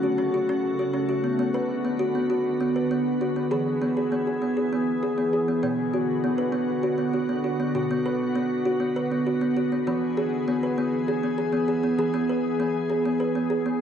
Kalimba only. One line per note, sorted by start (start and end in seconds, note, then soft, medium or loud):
0.00 1.35 F#3 medium
0.00 0.18 F#4 medium
0.18 0.34 C#4 medium
0.34 0.49 F#4 medium
0.49 0.79 C#4 medium
0.79 0.94 F#4 medium
0.94 1.09 C#4 medium
1.09 1.24 F#4 medium
1.24 1.38 B3 medium
1.39 1.83 B3 medium
1.54 1.85 B4 medium
1.85 2.00 B3 medium
1.99 2.15 F#4 medium
2.15 2.30 B3 medium
2.30 2.60 F#4 medium
2.61 2.76 B3 medium
2.76 2.91 B4 medium
2.91 3.21 B3 medium
3.21 3.36 F#4 medium
3.36 3.51 B3 medium
3.51 5.59 E3 medium
3.51 3.81 G#4 medium
3.82 3.97 B3 medium
3.97 4.12 G#4 medium
4.12 4.27 B3 medium
4.27 4.42 G#4 medium
4.42 4.57 B3 medium
4.57 4.72 G#4 medium
4.73 5.03 B3 medium
5.03 5.18 G#4 medium
5.18 5.33 B3 medium
5.33 5.48 G#4 medium
5.48 5.62 B3 medium
5.63 7.71 B2 medium
5.63 5.93 B3 medium
5.94 6.24 F#4 medium
6.24 6.39 B3 medium
6.38 6.54 B4 medium
6.52 6.83 B3 medium
6.83 6.99 F#4 medium
6.98 7.14 B3 medium
7.13 7.29 F#4 medium
7.29 7.44 B3 medium
7.44 7.60 F#4 medium
7.60 7.75 B3 medium
7.75 9.83 B2 medium
7.75 7.90 F#4 medium
7.91 8.06 B3 medium
8.06 8.36 B4 medium
8.35 8.66 B3 medium
8.65 8.81 F#4 medium
8.80 8.96 B3 medium
8.96 9.11 B4 medium
9.12 9.27 B3 medium
9.27 9.42 F#4 medium
9.41 9.57 B3 medium
9.57 9.72 F#4 medium
9.72 9.86 B3 medium
9.87 11.95 E3 medium
9.87 10.17 B3 medium
10.17 10.48 G#4 medium
10.48 10.63 B3 medium
10.63 10.78 B4 medium
10.78 11.08 B3 medium
11.08 11.23 G#4 medium
11.23 11.39 B3 medium
11.38 11.54 G#4 medium
11.53 11.68 B3 medium
11.68 11.84 G#4 medium
11.83 11.99 B3 medium
11.99 13.81 E3 medium
11.99 12.14 G#4 medium
12.14 12.29 B3 medium
12.29 12.60 B4 medium
12.60 12.90 B3 medium
12.90 13.05 G#4 medium
13.05 13.21 B3 medium
13.20 13.35 B4 medium
13.35 13.51 B3 medium
13.50 13.66 G#4 medium
13.66 13.81 B3 medium